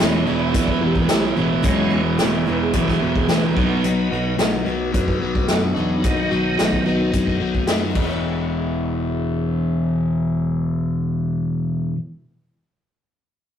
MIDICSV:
0, 0, Header, 1, 6, 480
1, 0, Start_track
1, 0, Key_signature, 4, "major"
1, 0, Tempo, 549954
1, 1437, Time_signature, 4, 2, 24, 8
1, 11854, End_track
2, 0, Start_track
2, 0, Title_t, "Tonewheel organ"
2, 0, Program_c, 0, 16
2, 0, Note_on_c, 0, 54, 46
2, 0, Note_on_c, 0, 56, 48
2, 0, Note_on_c, 0, 61, 56
2, 206, Note_off_c, 0, 54, 0
2, 206, Note_off_c, 0, 56, 0
2, 209, Note_off_c, 0, 61, 0
2, 234, Note_on_c, 0, 74, 75
2, 348, Note_off_c, 0, 74, 0
2, 360, Note_on_c, 0, 76, 74
2, 471, Note_off_c, 0, 76, 0
2, 505, Note_on_c, 0, 74, 80
2, 604, Note_off_c, 0, 74, 0
2, 626, Note_on_c, 0, 71, 70
2, 724, Note_off_c, 0, 71, 0
2, 750, Note_on_c, 0, 67, 73
2, 847, Note_off_c, 0, 67, 0
2, 880, Note_on_c, 0, 71, 67
2, 972, Note_off_c, 0, 71, 0
2, 984, Note_on_c, 0, 67, 82
2, 1083, Note_off_c, 0, 67, 0
2, 1094, Note_on_c, 0, 64, 71
2, 1198, Note_off_c, 0, 64, 0
2, 1199, Note_on_c, 0, 62, 79
2, 1309, Note_off_c, 0, 62, 0
2, 1348, Note_on_c, 0, 64, 75
2, 1417, Note_on_c, 0, 63, 63
2, 1436, Note_on_c, 0, 54, 45
2, 1442, Note_on_c, 0, 56, 43
2, 1444, Note_off_c, 0, 63, 0
2, 1444, Note_off_c, 0, 64, 0
2, 1451, Note_on_c, 0, 61, 51
2, 1455, Note_on_c, 0, 64, 92
2, 1679, Note_off_c, 0, 64, 0
2, 1755, Note_off_c, 0, 54, 0
2, 1759, Note_off_c, 0, 56, 0
2, 1763, Note_off_c, 0, 61, 0
2, 2176, Note_on_c, 0, 71, 73
2, 2278, Note_off_c, 0, 71, 0
2, 2288, Note_on_c, 0, 68, 75
2, 2394, Note_off_c, 0, 68, 0
2, 2405, Note_on_c, 0, 71, 76
2, 2512, Note_off_c, 0, 71, 0
2, 2522, Note_on_c, 0, 68, 70
2, 2629, Note_on_c, 0, 71, 65
2, 2630, Note_off_c, 0, 68, 0
2, 2744, Note_off_c, 0, 71, 0
2, 2764, Note_on_c, 0, 68, 72
2, 2872, Note_off_c, 0, 68, 0
2, 2888, Note_on_c, 0, 71, 93
2, 3099, Note_on_c, 0, 54, 54
2, 3101, Note_on_c, 0, 59, 41
2, 3113, Note_on_c, 0, 63, 58
2, 3791, Note_off_c, 0, 54, 0
2, 3792, Note_off_c, 0, 59, 0
2, 3798, Note_off_c, 0, 63, 0
2, 3812, Note_off_c, 0, 71, 0
2, 4034, Note_on_c, 0, 70, 55
2, 4065, Note_off_c, 0, 70, 0
2, 4078, Note_on_c, 0, 71, 86
2, 4774, Note_off_c, 0, 71, 0
2, 4808, Note_on_c, 0, 69, 92
2, 4912, Note_off_c, 0, 69, 0
2, 4919, Note_on_c, 0, 62, 82
2, 5012, Note_on_c, 0, 54, 54
2, 5018, Note_on_c, 0, 59, 49
2, 5018, Note_on_c, 0, 63, 52
2, 5258, Note_off_c, 0, 59, 0
2, 5265, Note_off_c, 0, 62, 0
2, 5269, Note_on_c, 0, 59, 90
2, 5274, Note_on_c, 0, 51, 73
2, 6215, Note_off_c, 0, 59, 0
2, 6216, Note_off_c, 0, 54, 0
2, 6217, Note_off_c, 0, 63, 0
2, 6225, Note_on_c, 0, 59, 35
2, 6226, Note_on_c, 0, 54, 36
2, 6227, Note_on_c, 0, 63, 40
2, 6445, Note_off_c, 0, 54, 0
2, 6445, Note_off_c, 0, 59, 0
2, 6446, Note_off_c, 0, 63, 0
2, 6679, Note_off_c, 0, 51, 0
2, 11854, End_track
3, 0, Start_track
3, 0, Title_t, "Twelve-string acoustic guitar"
3, 0, Program_c, 1, 25
3, 0, Note_on_c, 1, 52, 64
3, 9, Note_on_c, 1, 56, 67
3, 18, Note_on_c, 1, 61, 70
3, 19, Note_on_c, 1, 64, 60
3, 223, Note_off_c, 1, 64, 0
3, 231, Note_off_c, 1, 61, 0
3, 233, Note_on_c, 1, 64, 48
3, 236, Note_off_c, 1, 52, 0
3, 241, Note_on_c, 1, 61, 47
3, 244, Note_off_c, 1, 56, 0
3, 254, Note_on_c, 1, 56, 39
3, 258, Note_on_c, 1, 52, 40
3, 939, Note_off_c, 1, 52, 0
3, 948, Note_off_c, 1, 56, 0
3, 949, Note_on_c, 1, 52, 52
3, 955, Note_off_c, 1, 64, 0
3, 956, Note_off_c, 1, 61, 0
3, 959, Note_on_c, 1, 56, 47
3, 966, Note_on_c, 1, 61, 57
3, 977, Note_on_c, 1, 64, 57
3, 1181, Note_off_c, 1, 64, 0
3, 1186, Note_off_c, 1, 61, 0
3, 1191, Note_on_c, 1, 64, 44
3, 1193, Note_off_c, 1, 52, 0
3, 1195, Note_off_c, 1, 56, 0
3, 1196, Note_on_c, 1, 61, 47
3, 1205, Note_on_c, 1, 56, 40
3, 1211, Note_on_c, 1, 52, 35
3, 1415, Note_off_c, 1, 52, 0
3, 1419, Note_on_c, 1, 40, 69
3, 1420, Note_off_c, 1, 56, 0
3, 1422, Note_off_c, 1, 61, 0
3, 1425, Note_on_c, 1, 47, 67
3, 1425, Note_on_c, 1, 52, 62
3, 1427, Note_off_c, 1, 64, 0
3, 1431, Note_on_c, 1, 56, 72
3, 1433, Note_on_c, 1, 61, 71
3, 1437, Note_on_c, 1, 64, 70
3, 1649, Note_off_c, 1, 64, 0
3, 1653, Note_off_c, 1, 61, 0
3, 1659, Note_on_c, 1, 64, 44
3, 1663, Note_on_c, 1, 61, 46
3, 1665, Note_off_c, 1, 56, 0
3, 1667, Note_off_c, 1, 40, 0
3, 1671, Note_off_c, 1, 47, 0
3, 1671, Note_off_c, 1, 52, 0
3, 1675, Note_on_c, 1, 56, 37
3, 1681, Note_on_c, 1, 52, 40
3, 1892, Note_off_c, 1, 52, 0
3, 1903, Note_on_c, 1, 52, 57
3, 1904, Note_off_c, 1, 56, 0
3, 1907, Note_off_c, 1, 64, 0
3, 1910, Note_off_c, 1, 61, 0
3, 1914, Note_on_c, 1, 56, 63
3, 1920, Note_on_c, 1, 61, 64
3, 1933, Note_on_c, 1, 64, 67
3, 2137, Note_off_c, 1, 64, 0
3, 2144, Note_off_c, 1, 61, 0
3, 2147, Note_on_c, 1, 64, 44
3, 2149, Note_off_c, 1, 52, 0
3, 2155, Note_off_c, 1, 56, 0
3, 2155, Note_on_c, 1, 61, 47
3, 2164, Note_on_c, 1, 56, 40
3, 2174, Note_on_c, 1, 52, 38
3, 2855, Note_off_c, 1, 52, 0
3, 2863, Note_off_c, 1, 56, 0
3, 2865, Note_on_c, 1, 52, 46
3, 2869, Note_off_c, 1, 61, 0
3, 2871, Note_off_c, 1, 64, 0
3, 2874, Note_on_c, 1, 56, 51
3, 2880, Note_on_c, 1, 61, 52
3, 2885, Note_on_c, 1, 64, 44
3, 3106, Note_off_c, 1, 64, 0
3, 3110, Note_off_c, 1, 52, 0
3, 3110, Note_on_c, 1, 66, 43
3, 3114, Note_off_c, 1, 56, 0
3, 3115, Note_off_c, 1, 61, 0
3, 3118, Note_on_c, 1, 63, 41
3, 3132, Note_on_c, 1, 59, 41
3, 3352, Note_off_c, 1, 66, 0
3, 3356, Note_off_c, 1, 63, 0
3, 3357, Note_off_c, 1, 59, 0
3, 3360, Note_on_c, 1, 47, 66
3, 3362, Note_on_c, 1, 54, 68
3, 3368, Note_on_c, 1, 59, 63
3, 3371, Note_on_c, 1, 66, 68
3, 3376, Note_on_c, 1, 63, 72
3, 3593, Note_off_c, 1, 66, 0
3, 3597, Note_off_c, 1, 47, 0
3, 3598, Note_off_c, 1, 54, 0
3, 3601, Note_off_c, 1, 59, 0
3, 3604, Note_on_c, 1, 66, 52
3, 3605, Note_off_c, 1, 63, 0
3, 3615, Note_on_c, 1, 63, 46
3, 3623, Note_on_c, 1, 59, 43
3, 3829, Note_on_c, 1, 54, 64
3, 3831, Note_off_c, 1, 59, 0
3, 3839, Note_off_c, 1, 63, 0
3, 3839, Note_off_c, 1, 66, 0
3, 3841, Note_on_c, 1, 59, 70
3, 3849, Note_on_c, 1, 63, 64
3, 3854, Note_on_c, 1, 66, 67
3, 4057, Note_off_c, 1, 66, 0
3, 4068, Note_on_c, 1, 66, 46
3, 4071, Note_off_c, 1, 54, 0
3, 4073, Note_off_c, 1, 63, 0
3, 4077, Note_off_c, 1, 59, 0
3, 4084, Note_on_c, 1, 63, 38
3, 4098, Note_on_c, 1, 59, 39
3, 4787, Note_on_c, 1, 54, 48
3, 4790, Note_off_c, 1, 66, 0
3, 4791, Note_off_c, 1, 59, 0
3, 4792, Note_off_c, 1, 63, 0
3, 4795, Note_on_c, 1, 59, 57
3, 4802, Note_on_c, 1, 63, 52
3, 4810, Note_on_c, 1, 66, 55
3, 5022, Note_off_c, 1, 66, 0
3, 5029, Note_off_c, 1, 63, 0
3, 5030, Note_off_c, 1, 54, 0
3, 5033, Note_on_c, 1, 66, 44
3, 5034, Note_off_c, 1, 59, 0
3, 5039, Note_on_c, 1, 63, 41
3, 5052, Note_on_c, 1, 59, 35
3, 5265, Note_off_c, 1, 59, 0
3, 5273, Note_off_c, 1, 66, 0
3, 5273, Note_on_c, 1, 47, 65
3, 5274, Note_off_c, 1, 63, 0
3, 5276, Note_on_c, 1, 54, 66
3, 5276, Note_on_c, 1, 59, 65
3, 5285, Note_on_c, 1, 63, 70
3, 5290, Note_on_c, 1, 66, 62
3, 5494, Note_off_c, 1, 66, 0
3, 5505, Note_on_c, 1, 66, 41
3, 5509, Note_off_c, 1, 63, 0
3, 5513, Note_off_c, 1, 47, 0
3, 5514, Note_off_c, 1, 54, 0
3, 5514, Note_off_c, 1, 59, 0
3, 5520, Note_on_c, 1, 63, 46
3, 5535, Note_on_c, 1, 59, 36
3, 5749, Note_off_c, 1, 66, 0
3, 5750, Note_off_c, 1, 59, 0
3, 5752, Note_on_c, 1, 54, 54
3, 5756, Note_off_c, 1, 63, 0
3, 5761, Note_on_c, 1, 59, 50
3, 5770, Note_on_c, 1, 63, 58
3, 5774, Note_on_c, 1, 66, 56
3, 5973, Note_off_c, 1, 66, 0
3, 5983, Note_on_c, 1, 66, 47
3, 5989, Note_off_c, 1, 63, 0
3, 5993, Note_off_c, 1, 54, 0
3, 5997, Note_off_c, 1, 59, 0
3, 5999, Note_on_c, 1, 63, 45
3, 6009, Note_on_c, 1, 59, 42
3, 6698, Note_on_c, 1, 54, 49
3, 6703, Note_off_c, 1, 59, 0
3, 6708, Note_off_c, 1, 66, 0
3, 6711, Note_off_c, 1, 63, 0
3, 6714, Note_on_c, 1, 59, 52
3, 6722, Note_on_c, 1, 63, 55
3, 6723, Note_on_c, 1, 66, 54
3, 6901, Note_on_c, 1, 40, 61
3, 6943, Note_on_c, 1, 47, 70
3, 6946, Note_off_c, 1, 54, 0
3, 6953, Note_off_c, 1, 59, 0
3, 6958, Note_off_c, 1, 63, 0
3, 6958, Note_off_c, 1, 66, 0
3, 6982, Note_on_c, 1, 52, 58
3, 7012, Note_on_c, 1, 56, 61
3, 7042, Note_on_c, 1, 61, 62
3, 7075, Note_on_c, 1, 64, 64
3, 10394, Note_off_c, 1, 40, 0
3, 10435, Note_off_c, 1, 47, 0
3, 10474, Note_off_c, 1, 52, 0
3, 10505, Note_off_c, 1, 56, 0
3, 10535, Note_off_c, 1, 61, 0
3, 10567, Note_off_c, 1, 64, 0
3, 11854, End_track
4, 0, Start_track
4, 0, Title_t, "Overdriven electric guitar"
4, 0, Program_c, 2, 29
4, 0, Note_on_c, 2, 40, 59
4, 0, Note_on_c, 2, 47, 67
4, 4, Note_on_c, 2, 52, 72
4, 213, Note_off_c, 2, 40, 0
4, 220, Note_off_c, 2, 47, 0
4, 222, Note_off_c, 2, 52, 0
4, 224, Note_on_c, 2, 40, 69
4, 231, Note_on_c, 2, 47, 81
4, 233, Note_on_c, 2, 52, 69
4, 449, Note_off_c, 2, 40, 0
4, 459, Note_off_c, 2, 47, 0
4, 460, Note_on_c, 2, 40, 89
4, 461, Note_off_c, 2, 52, 0
4, 470, Note_on_c, 2, 47, 101
4, 471, Note_on_c, 2, 52, 90
4, 691, Note_off_c, 2, 40, 0
4, 699, Note_off_c, 2, 47, 0
4, 701, Note_off_c, 2, 52, 0
4, 702, Note_on_c, 2, 40, 78
4, 709, Note_on_c, 2, 47, 71
4, 712, Note_on_c, 2, 52, 76
4, 937, Note_off_c, 2, 40, 0
4, 941, Note_off_c, 2, 47, 0
4, 948, Note_on_c, 2, 40, 85
4, 950, Note_off_c, 2, 52, 0
4, 952, Note_on_c, 2, 47, 73
4, 961, Note_on_c, 2, 52, 80
4, 1179, Note_off_c, 2, 40, 0
4, 1183, Note_off_c, 2, 47, 0
4, 1189, Note_off_c, 2, 52, 0
4, 1189, Note_on_c, 2, 40, 79
4, 1194, Note_on_c, 2, 47, 93
4, 1199, Note_on_c, 2, 52, 83
4, 1421, Note_off_c, 2, 40, 0
4, 1429, Note_off_c, 2, 47, 0
4, 1431, Note_on_c, 2, 40, 83
4, 1432, Note_off_c, 2, 52, 0
4, 1439, Note_on_c, 2, 47, 81
4, 1442, Note_on_c, 2, 52, 92
4, 1657, Note_off_c, 2, 40, 0
4, 1662, Note_off_c, 2, 47, 0
4, 1665, Note_off_c, 2, 52, 0
4, 1668, Note_on_c, 2, 40, 64
4, 1672, Note_on_c, 2, 47, 76
4, 1675, Note_on_c, 2, 52, 71
4, 1906, Note_off_c, 2, 40, 0
4, 1913, Note_off_c, 2, 47, 0
4, 1916, Note_on_c, 2, 40, 75
4, 1920, Note_off_c, 2, 52, 0
4, 1923, Note_on_c, 2, 47, 62
4, 1931, Note_on_c, 2, 52, 72
4, 2144, Note_off_c, 2, 40, 0
4, 2151, Note_off_c, 2, 47, 0
4, 2152, Note_off_c, 2, 52, 0
4, 2154, Note_on_c, 2, 40, 62
4, 2161, Note_on_c, 2, 47, 68
4, 2163, Note_on_c, 2, 52, 73
4, 2376, Note_off_c, 2, 40, 0
4, 2386, Note_on_c, 2, 40, 76
4, 2388, Note_off_c, 2, 47, 0
4, 2388, Note_off_c, 2, 52, 0
4, 2399, Note_on_c, 2, 47, 91
4, 2399, Note_on_c, 2, 52, 95
4, 2613, Note_off_c, 2, 40, 0
4, 2619, Note_off_c, 2, 47, 0
4, 2623, Note_on_c, 2, 40, 76
4, 2626, Note_off_c, 2, 52, 0
4, 2629, Note_on_c, 2, 47, 82
4, 2637, Note_on_c, 2, 52, 78
4, 2848, Note_off_c, 2, 40, 0
4, 2854, Note_off_c, 2, 47, 0
4, 2857, Note_off_c, 2, 52, 0
4, 2859, Note_on_c, 2, 40, 73
4, 2864, Note_on_c, 2, 47, 72
4, 2867, Note_on_c, 2, 52, 83
4, 3092, Note_off_c, 2, 40, 0
4, 3095, Note_off_c, 2, 47, 0
4, 3097, Note_off_c, 2, 52, 0
4, 3105, Note_on_c, 2, 47, 80
4, 3115, Note_on_c, 2, 59, 101
4, 3116, Note_on_c, 2, 54, 86
4, 3345, Note_off_c, 2, 47, 0
4, 3349, Note_on_c, 2, 47, 81
4, 3351, Note_off_c, 2, 54, 0
4, 3354, Note_on_c, 2, 54, 88
4, 3357, Note_off_c, 2, 59, 0
4, 3361, Note_on_c, 2, 59, 88
4, 3578, Note_off_c, 2, 47, 0
4, 3581, Note_on_c, 2, 47, 73
4, 3585, Note_off_c, 2, 54, 0
4, 3589, Note_on_c, 2, 54, 63
4, 3590, Note_off_c, 2, 59, 0
4, 3593, Note_on_c, 2, 59, 78
4, 3814, Note_off_c, 2, 47, 0
4, 3818, Note_on_c, 2, 47, 61
4, 3822, Note_off_c, 2, 54, 0
4, 3826, Note_off_c, 2, 59, 0
4, 3826, Note_on_c, 2, 54, 78
4, 3829, Note_on_c, 2, 59, 73
4, 4053, Note_off_c, 2, 47, 0
4, 4057, Note_off_c, 2, 54, 0
4, 4057, Note_on_c, 2, 47, 67
4, 4060, Note_on_c, 2, 54, 82
4, 4062, Note_off_c, 2, 59, 0
4, 4066, Note_on_c, 2, 59, 79
4, 4287, Note_off_c, 2, 47, 0
4, 4293, Note_off_c, 2, 54, 0
4, 4298, Note_on_c, 2, 47, 91
4, 4303, Note_off_c, 2, 59, 0
4, 4304, Note_on_c, 2, 54, 90
4, 4306, Note_on_c, 2, 59, 96
4, 4532, Note_off_c, 2, 47, 0
4, 4535, Note_off_c, 2, 54, 0
4, 4542, Note_on_c, 2, 47, 74
4, 4546, Note_on_c, 2, 54, 70
4, 4549, Note_off_c, 2, 59, 0
4, 4552, Note_on_c, 2, 59, 81
4, 4772, Note_off_c, 2, 47, 0
4, 4775, Note_off_c, 2, 54, 0
4, 4782, Note_on_c, 2, 47, 78
4, 4785, Note_on_c, 2, 54, 84
4, 4789, Note_off_c, 2, 59, 0
4, 4792, Note_on_c, 2, 59, 80
4, 5008, Note_off_c, 2, 47, 0
4, 5016, Note_off_c, 2, 54, 0
4, 5018, Note_on_c, 2, 47, 71
4, 5026, Note_on_c, 2, 54, 76
4, 5027, Note_off_c, 2, 59, 0
4, 5031, Note_on_c, 2, 59, 75
4, 5249, Note_off_c, 2, 47, 0
4, 5257, Note_off_c, 2, 54, 0
4, 5260, Note_on_c, 2, 47, 69
4, 5262, Note_off_c, 2, 59, 0
4, 5268, Note_on_c, 2, 54, 69
4, 5273, Note_on_c, 2, 59, 93
4, 5491, Note_off_c, 2, 47, 0
4, 5497, Note_off_c, 2, 54, 0
4, 5500, Note_off_c, 2, 59, 0
4, 5502, Note_on_c, 2, 47, 64
4, 5507, Note_on_c, 2, 54, 66
4, 5511, Note_on_c, 2, 59, 79
4, 5726, Note_off_c, 2, 47, 0
4, 5728, Note_off_c, 2, 54, 0
4, 5730, Note_off_c, 2, 59, 0
4, 5736, Note_on_c, 2, 47, 67
4, 5739, Note_on_c, 2, 54, 66
4, 5741, Note_on_c, 2, 59, 63
4, 5974, Note_off_c, 2, 47, 0
4, 5978, Note_off_c, 2, 54, 0
4, 5979, Note_off_c, 2, 59, 0
4, 5984, Note_on_c, 2, 47, 62
4, 5988, Note_on_c, 2, 54, 74
4, 5989, Note_on_c, 2, 59, 69
4, 6202, Note_off_c, 2, 47, 0
4, 6205, Note_off_c, 2, 54, 0
4, 6212, Note_off_c, 2, 59, 0
4, 6213, Note_on_c, 2, 47, 71
4, 6215, Note_on_c, 2, 54, 83
4, 6222, Note_on_c, 2, 59, 85
4, 6445, Note_off_c, 2, 47, 0
4, 6456, Note_off_c, 2, 59, 0
4, 6456, Note_on_c, 2, 47, 69
4, 6458, Note_off_c, 2, 54, 0
4, 6467, Note_on_c, 2, 59, 67
4, 6468, Note_on_c, 2, 54, 76
4, 6691, Note_off_c, 2, 47, 0
4, 6698, Note_off_c, 2, 54, 0
4, 6701, Note_on_c, 2, 47, 73
4, 6702, Note_off_c, 2, 59, 0
4, 6709, Note_on_c, 2, 54, 63
4, 6712, Note_on_c, 2, 59, 69
4, 6927, Note_on_c, 2, 40, 76
4, 6930, Note_off_c, 2, 47, 0
4, 6940, Note_on_c, 2, 47, 85
4, 6951, Note_off_c, 2, 54, 0
4, 6953, Note_off_c, 2, 59, 0
4, 6961, Note_on_c, 2, 52, 80
4, 10419, Note_off_c, 2, 40, 0
4, 10433, Note_off_c, 2, 47, 0
4, 10454, Note_off_c, 2, 52, 0
4, 11854, End_track
5, 0, Start_track
5, 0, Title_t, "Fingered electric bass"
5, 0, Program_c, 3, 33
5, 11, Note_on_c, 3, 28, 89
5, 221, Note_off_c, 3, 28, 0
5, 241, Note_on_c, 3, 28, 70
5, 456, Note_off_c, 3, 28, 0
5, 472, Note_on_c, 3, 35, 76
5, 690, Note_off_c, 3, 35, 0
5, 724, Note_on_c, 3, 28, 84
5, 937, Note_off_c, 3, 28, 0
5, 954, Note_on_c, 3, 35, 75
5, 1171, Note_off_c, 3, 35, 0
5, 1198, Note_on_c, 3, 33, 71
5, 1413, Note_off_c, 3, 33, 0
5, 1435, Note_on_c, 3, 28, 85
5, 1651, Note_off_c, 3, 28, 0
5, 1671, Note_on_c, 3, 28, 84
5, 1889, Note_off_c, 3, 28, 0
5, 1917, Note_on_c, 3, 28, 87
5, 2132, Note_off_c, 3, 28, 0
5, 2162, Note_on_c, 3, 28, 77
5, 2375, Note_off_c, 3, 28, 0
5, 2391, Note_on_c, 3, 35, 80
5, 2609, Note_off_c, 3, 35, 0
5, 2636, Note_on_c, 3, 28, 88
5, 2851, Note_off_c, 3, 28, 0
5, 2881, Note_on_c, 3, 37, 74
5, 3115, Note_off_c, 3, 37, 0
5, 3115, Note_on_c, 3, 35, 75
5, 3330, Note_off_c, 3, 35, 0
5, 3350, Note_on_c, 3, 35, 86
5, 3567, Note_off_c, 3, 35, 0
5, 3595, Note_on_c, 3, 35, 84
5, 3810, Note_off_c, 3, 35, 0
5, 3838, Note_on_c, 3, 35, 86
5, 4052, Note_off_c, 3, 35, 0
5, 4082, Note_on_c, 3, 35, 81
5, 4294, Note_off_c, 3, 35, 0
5, 4316, Note_on_c, 3, 42, 70
5, 4531, Note_off_c, 3, 42, 0
5, 4558, Note_on_c, 3, 35, 80
5, 4771, Note_off_c, 3, 35, 0
5, 4799, Note_on_c, 3, 42, 77
5, 5012, Note_off_c, 3, 42, 0
5, 5031, Note_on_c, 3, 40, 69
5, 5247, Note_off_c, 3, 40, 0
5, 5269, Note_on_c, 3, 35, 82
5, 5487, Note_off_c, 3, 35, 0
5, 5516, Note_on_c, 3, 35, 81
5, 5730, Note_off_c, 3, 35, 0
5, 5752, Note_on_c, 3, 35, 85
5, 5968, Note_off_c, 3, 35, 0
5, 5989, Note_on_c, 3, 35, 78
5, 6206, Note_off_c, 3, 35, 0
5, 6224, Note_on_c, 3, 42, 74
5, 6444, Note_off_c, 3, 42, 0
5, 6453, Note_on_c, 3, 35, 74
5, 6678, Note_off_c, 3, 35, 0
5, 6691, Note_on_c, 3, 42, 60
5, 6917, Note_off_c, 3, 42, 0
5, 6942, Note_on_c, 3, 28, 69
5, 10400, Note_off_c, 3, 28, 0
5, 11854, End_track
6, 0, Start_track
6, 0, Title_t, "Drums"
6, 0, Note_on_c, 9, 38, 102
6, 0, Note_on_c, 9, 42, 53
6, 87, Note_off_c, 9, 42, 0
6, 88, Note_off_c, 9, 38, 0
6, 474, Note_on_c, 9, 42, 58
6, 475, Note_on_c, 9, 36, 96
6, 562, Note_off_c, 9, 36, 0
6, 562, Note_off_c, 9, 42, 0
6, 592, Note_on_c, 9, 36, 69
6, 680, Note_off_c, 9, 36, 0
6, 832, Note_on_c, 9, 36, 70
6, 920, Note_off_c, 9, 36, 0
6, 949, Note_on_c, 9, 42, 64
6, 950, Note_on_c, 9, 38, 98
6, 1036, Note_off_c, 9, 42, 0
6, 1037, Note_off_c, 9, 38, 0
6, 1431, Note_on_c, 9, 36, 103
6, 1431, Note_on_c, 9, 42, 65
6, 1518, Note_off_c, 9, 36, 0
6, 1518, Note_off_c, 9, 42, 0
6, 1910, Note_on_c, 9, 42, 51
6, 1911, Note_on_c, 9, 38, 91
6, 1997, Note_off_c, 9, 42, 0
6, 1998, Note_off_c, 9, 38, 0
6, 2386, Note_on_c, 9, 42, 58
6, 2391, Note_on_c, 9, 36, 90
6, 2474, Note_off_c, 9, 42, 0
6, 2478, Note_off_c, 9, 36, 0
6, 2513, Note_on_c, 9, 36, 70
6, 2514, Note_on_c, 9, 38, 27
6, 2600, Note_off_c, 9, 36, 0
6, 2601, Note_off_c, 9, 38, 0
6, 2754, Note_on_c, 9, 36, 72
6, 2842, Note_off_c, 9, 36, 0
6, 2870, Note_on_c, 9, 42, 49
6, 2871, Note_on_c, 9, 38, 100
6, 2957, Note_off_c, 9, 42, 0
6, 2958, Note_off_c, 9, 38, 0
6, 3112, Note_on_c, 9, 36, 89
6, 3200, Note_off_c, 9, 36, 0
6, 3353, Note_on_c, 9, 42, 53
6, 3440, Note_off_c, 9, 42, 0
6, 3831, Note_on_c, 9, 42, 52
6, 3832, Note_on_c, 9, 38, 102
6, 3918, Note_off_c, 9, 42, 0
6, 3919, Note_off_c, 9, 38, 0
6, 4313, Note_on_c, 9, 42, 53
6, 4314, Note_on_c, 9, 36, 93
6, 4400, Note_off_c, 9, 42, 0
6, 4401, Note_off_c, 9, 36, 0
6, 4433, Note_on_c, 9, 36, 69
6, 4521, Note_off_c, 9, 36, 0
6, 4672, Note_on_c, 9, 36, 64
6, 4759, Note_off_c, 9, 36, 0
6, 4785, Note_on_c, 9, 42, 58
6, 4786, Note_on_c, 9, 38, 88
6, 4872, Note_off_c, 9, 42, 0
6, 4873, Note_off_c, 9, 38, 0
6, 5270, Note_on_c, 9, 42, 57
6, 5273, Note_on_c, 9, 36, 90
6, 5357, Note_off_c, 9, 42, 0
6, 5360, Note_off_c, 9, 36, 0
6, 5750, Note_on_c, 9, 42, 53
6, 5751, Note_on_c, 9, 38, 100
6, 5837, Note_off_c, 9, 42, 0
6, 5838, Note_off_c, 9, 38, 0
6, 5870, Note_on_c, 9, 36, 49
6, 5957, Note_off_c, 9, 36, 0
6, 6226, Note_on_c, 9, 42, 51
6, 6228, Note_on_c, 9, 36, 88
6, 6313, Note_off_c, 9, 42, 0
6, 6315, Note_off_c, 9, 36, 0
6, 6347, Note_on_c, 9, 36, 57
6, 6435, Note_off_c, 9, 36, 0
6, 6586, Note_on_c, 9, 36, 62
6, 6673, Note_off_c, 9, 36, 0
6, 6697, Note_on_c, 9, 42, 53
6, 6698, Note_on_c, 9, 38, 96
6, 6784, Note_off_c, 9, 42, 0
6, 6785, Note_off_c, 9, 38, 0
6, 6940, Note_on_c, 9, 49, 65
6, 6943, Note_on_c, 9, 36, 80
6, 7027, Note_off_c, 9, 49, 0
6, 7030, Note_off_c, 9, 36, 0
6, 11854, End_track
0, 0, End_of_file